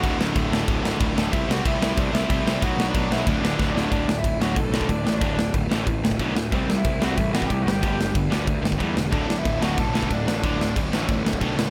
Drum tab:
CC |x---x---x---x---|x---x---x---x---|x---x---x-------|x---x---x---x---|
SD |--o---o---o---o-|--o---o---o---o-|--o---o---o-o-o-|--o---o---o---o-|
BD |o---o---o---o---|o---o---o---o---|o---o---o---o---|o---o---o--oo---|

CC |x---x---x---x---|x---x---x---x---|x---x---x---x---|x---x---x---x---|
SD |--o---o---o---o-|--o---o---o---o-|--o---o---o---o-|--o---o---o---o-|
BD |o---o---o--oo---|o---o---o--oo---|o---o---o--oo---|o---o---o--oo---|

CC |x---x---x---x---|
SD |--o---o---o---o-|
BD |o---o---o--oo---|